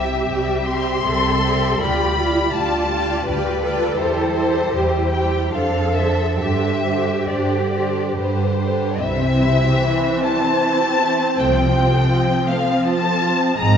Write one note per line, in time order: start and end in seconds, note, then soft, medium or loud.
0.00 0.18 C2 medium
0.00 0.26 G3 soft
0.00 0.26 C4 soft
0.00 0.27 G4 soft
0.00 1.06 G4 medium
0.00 0.27 E5 soft
0.00 0.68 E5 medium
0.27 0.97 C2 medium
0.27 0.66 G3 soft
0.27 0.66 C4 soft
0.27 0.66 G4 soft
0.27 0.67 E5 soft
0.66 1.03 G3 soft
0.66 1.03 C4 soft
0.66 1.04 G4 soft
0.66 1.04 E5 soft
0.66 1.81 C6 medium
1.04 1.73 C2 medium
1.04 1.40 G3 soft
1.04 1.40 C4 soft
1.04 1.41 G4 soft
1.04 1.82 A4 medium
1.04 1.41 E5 soft
1.41 1.79 G3 soft
1.41 1.79 C4 soft
1.41 1.80 G4 medium
1.41 1.80 E5 soft
1.80 2.46 D2 medium
1.80 2.15 G3 soft
1.80 2.15 F4 medium
1.80 2.17 G4 soft
1.80 2.19 G4 medium
1.80 2.18 D5 soft
1.80 2.53 B5 medium
2.17 2.51 G3 soft
2.17 2.55 E4 medium
2.17 2.51 F4 soft
2.17 2.54 G4 soft
2.17 2.53 D5 soft
2.52 3.19 D2 medium
2.52 2.89 G3 soft
2.52 2.89 F4 soft
2.52 3.27 F4 soft
2.52 2.91 G4 soft
2.52 2.90 D5 soft
2.52 3.26 A5 medium
2.90 3.26 G3 soft
2.90 3.26 F4 soft
2.90 3.27 G4 medium
2.90 3.27 D5 medium
3.26 3.89 D2 medium
3.26 3.62 G3 soft
3.26 3.61 F4 medium
3.26 3.63 G4 medium
3.26 3.62 G4 soft
3.26 3.96 B4 medium
3.26 3.62 D5 medium
3.63 3.97 G3 soft
3.63 3.97 F4 medium
3.63 3.97 G4 soft
3.63 4.72 A4 medium
3.63 3.98 D5 medium
3.97 4.64 E2 medium
3.97 4.32 G3 medium
3.97 4.32 E4 medium
3.97 4.33 G4 soft
3.97 5.13 C5 medium
3.97 4.33 C5 medium
4.34 4.72 G3 soft
4.34 4.72 E4 soft
4.34 4.73 G4 soft
4.34 4.73 C5 soft
4.73 5.44 E2 medium
4.73 5.12 G3 soft
4.73 5.12 E4 soft
4.73 5.12 G4 soft
4.73 5.13 G4 medium
4.73 5.13 C5 soft
5.11 5.53 G3 soft
5.11 5.53 E4 soft
5.11 5.53 G4 soft
5.11 5.53 G4 medium
5.11 5.53 C5 soft
5.11 5.53 G5 medium
5.52 6.29 F2 medium
5.52 5.95 D3 soft
5.52 5.95 D4 soft
5.52 5.94 A4 soft
5.52 6.38 A4 medium
5.52 5.94 C5 soft
5.52 5.94 F5 medium
5.94 6.39 D3 soft
5.94 6.39 D4 soft
5.94 6.39 A4 soft
5.94 6.38 C5 soft
5.94 6.37 E5 medium
6.38 7.19 G2 soft
6.38 6.85 D3 soft
6.38 6.84 D4 soft
6.38 6.83 G4 soft
6.38 8.61 G4 soft
6.38 6.83 C5 soft
6.38 7.27 E5 medium
6.84 7.30 D3 soft
6.84 7.30 D4 soft
6.84 7.28 G4 soft
6.84 7.27 C5 soft
7.28 8.07 G2 soft
7.28 7.74 D3 soft
7.28 7.74 D4 soft
7.28 7.73 G4 soft
7.28 7.73 C5 soft
7.28 8.17 D5 soft
7.74 8.17 D3 soft
7.74 8.17 D4 soft
7.74 8.16 G4 soft
7.74 8.16 C5 soft
8.17 8.93 G2 soft
8.17 8.60 D3 soft
8.17 8.60 D4 soft
8.17 8.59 G4 soft
8.17 8.59 B4 soft
8.17 8.98 C5 medium
8.60 9.03 D3 soft
8.60 9.03 D4 soft
8.60 9.02 G4 soft
8.60 9.01 B4 soft
9.01 9.70 C2 medium
9.01 9.70 C3 medium
9.01 11.36 E3 medium
9.01 9.21 G3 medium
9.01 13.55 C4 medium
9.01 13.54 C5 medium
9.01 10.24 E5 medium
9.22 9.42 C4 medium
9.42 9.62 E4 soft
9.62 9.83 G4 medium
9.84 10.05 E4 soft
10.06 10.26 C4 soft
10.25 10.45 G3 medium
10.25 11.37 A5 medium
10.44 10.64 C4 medium
10.63 10.82 E4 medium
10.81 11.01 G4 medium
11.01 11.20 E4 medium
11.20 11.39 C4 soft
11.38 12.01 C2 medium
11.38 12.01 C3 medium
11.38 13.78 F3 medium
11.38 11.56 A3 medium
11.38 12.49 G5 medium
11.57 11.76 C4 medium
11.76 11.94 F4 soft
11.93 12.12 A4 medium
12.11 12.30 F4 soft
12.28 12.48 C4 medium
12.47 12.67 A3 medium
12.47 12.86 F5 medium
12.67 12.85 C4 soft
12.84 13.04 F4 medium
12.84 13.58 A5 medium
13.03 13.22 A4 medium
13.22 13.40 F4 medium
13.38 13.58 C4 medium
13.58 13.78 G#1 medium
13.58 13.78 G#2 medium
13.58 13.75 G#3 medium
13.58 13.78 C4 medium
13.58 13.78 D#5 medium
13.58 13.78 A#5 medium